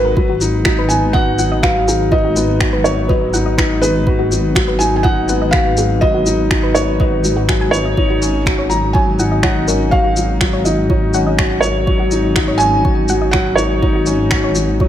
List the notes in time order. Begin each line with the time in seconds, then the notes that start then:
Already playing: G#1 F#3 C#4 D#4 F#4 B4, swell
0.05 A#4
0.17 G#1 F#3 B4, kick
0.29 F#4
0.41 D#4, shaker
0.65 D#4 F#4, finger snap, kick
0.79 B4
0.89 B3 G#5, shaker
1.13 F#4 D#5 F#5, kick
1.39 F#3 F#5, shaker
1.52 D#5
1.63 F#3 B4 F5, finger snap, kick
1.88 D#4 G#4, shaker
2.12 D#4 B4 D#5, kick
2.25 F#4
2.36 B3, shaker
2.61 F#4, finger snap, kick
2.73 B4
2.84 F#3 C#5, shaker
3.08 F#3 B4 D#5, kick
3.33 D#4 F#5, shaker
3.46 D#5
3.58 D#4 B4, finger snap, kick
3.81 B3 G#4 B4, shaker
4.07 F#4 B4, kick
4.19 F#4
4.32 F#3, shaker
4.55 F#3 F#4, finger snap, kick
4.68 B4
4.79 D#4 G#5, shaker
4.96 G#5
5.03 D#4 D#5 F#5, kick
5.29 B3 F#5, shaker
5.42 D#5
5.51 F#4 B4 F5, finger snap, kick
5.77 F#3 G#4, shaker
6.01 F#3 B4 D#5, kick
6.14 F#4
6.26 D#4, shaker
6.51 D#4 F#4, finger snap, kick
6.63 B4
6.74 B3 C#5, shaker
7.00 F#4 B4 D#5, kick
7.24 F#3, shaker
7.36 F#4
7.48 F#3 G#5, finger snap, kick
7.61 G#5
7.71 D#4 B4 C#5, shaker
7.85 D#5
7.97 G#1 D#4 C#5, kick
8.10 F#4
8.22 C#4, shaker
8.46 F#4, finger snap, kick
8.59 C#5
8.70 F#3 A#5, shaker
8.93 F#3 C#5 G#5, kick
9.19 D#4 F#5, shaker
9.31 D#5
9.43 D#4 C#5 F#5, finger snap, kick
9.68 C#4 A#4, shaker
9.91 F#4 C#5 F5, kick
10.04 F#4
10.17 F#3, shaker
10.41 F#3 F#4, finger snap, kick
10.53 C#5
10.65 D#4 D#5, shaker
10.90 D#4 C#5, kick
11.14 C#4 F#5, shaker
11.26 D#5
11.38 F#4 C#5, finger snap, kick
11.61 F#3 A#4 C#5, shaker
11.87 F#3 C#5, kick
11.99 F#4
12.11 D#4, shaker
12.36 D#4 F#4, finger snap, kick
12.48 C#5
12.58 C#4 G#5, shaker
12.85 F#4 C#5, kick
13.08 F#3 F#5, shaker
13.21 D#5
13.31 F#3 C#5 F#5, finger snap, kick
13.55 D#4 A#4 C#5, shaker
13.82 D#4 C#5, kick
13.95 F#4
14.06 C#4, shaker
14.31 F#4, finger snap, kick
14.44 C#5
14.55 F#3, shaker
14.80 F#3 C#5, kick